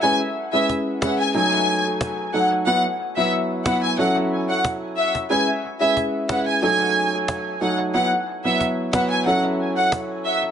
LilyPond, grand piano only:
\new Staff \with { instrumentName = "Grand piano" } { \time 4/4 \key cis \minor \tempo 4 = 91 <gis cis' e' b'>16 r8 <gis cis' e' b'>8. <gis cis' e' b'>8 <fis a dis' a'>4. <fis a dis' a'>8 | <fis b e' b'>16 r8 <fis b e' b'>8. <fis b e' b'>8 <fis cis' e' a'>4.~ <fis cis' e' a'>16 r16 | <gis cis' e' b'>16 r8 <gis cis' e' b'>8. <gis cis' e' b'>8 <fis a dis' a'>4. <fis a dis' a'>8 | <fis b e' b'>16 r8 <fis b e' b'>8. <fis b e' b'>8 <fis cis' e' a'>4.~ <fis cis' e' a'>16 r16 | }